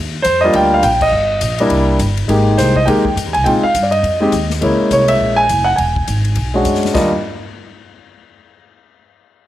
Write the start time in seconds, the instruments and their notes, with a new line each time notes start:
Already playing: upright bass D#2
0.22 upright bass F2, grand piano C5, kick, hi-hat pedal, ride
0.41 grand piano G3 A#3 D4 D#5
0.45 grand piano F4
0.53 upright bass D2, grand piano G5, kick, ride
0.74 grand piano F5
0.83 upright bass A#1, grand piano G5, kick, hi-hat pedal, ride
1.01 grand piano D#5, kick, crash
1.12 upright bass G1
1.41 upright bass A#1, kick, hi-hat pedal, ride
1.58 grand piano G3 A#3 D4 E4, ride
1.70 upright bass C2, kick, ride
1.99 upright bass G1, kick, hi-hat pedal, ride
2.17 ride
2.28 upright bass G#1, grand piano G#3 A#3 D#4 G4, kick, ride
2.58 upright bass C2, grand piano C5, kick, snare, hi-hat pedal, ride
2.76 grand piano D#5, kick
2.86 upright bass D#2, grand piano G#3 A#3 D#4 G4 G5, kick, ride
3.05 kick
3.16 upright bass F2, kick, hi-hat pedal, ride
3.26 upright bass D#2
3.33 upright bass C2, grand piano G#5, ride
3.44 upright bass A#2, grand piano G#3 C4 D#4 F4 G5, kick, ride
3.63 grand piano F5, muted upright bass stroke
3.74 upright bass G2, kick, hi-hat pedal, ride
3.83 grand piano D5
3.91 grand piano D#5, ride
4.03 upright bass F2, kick, ride
4.20 grand piano G#3 C4 D#4 G4
4.32 upright bass D#2, kick, hi-hat pedal, ride
4.50 snare
4.61 upright bass C#2, grand piano G#3 A#3 C#4 E4, kick, ride
4.80 muted upright bass stroke
4.91 upright bass C2, grand piano C#5, kick, hi-hat pedal, ride
5.08 grand piano E5, ride
5.20 upright bass A#1, kick
5.36 grand piano G#5
5.49 upright bass F#1, kick, hi-hat pedal, ride
5.64 grand piano F#5
5.76 upright bass E1, grand piano G#5, kick, ride
5.96 kick
6.08 upright bass G#1, kick, hi-hat pedal, ride
6.25 ride
6.35 upright bass B1, kick, ride
6.54 grand piano G#3 C#4 D4 F#4
6.65 upright bass F#2, kick, hi-hat pedal, ride
6.75 snare
6.83 snare, ride
6.94 upright bass D#2, grand piano G3 A#3 D4 F4 D#5, kick, snare, crash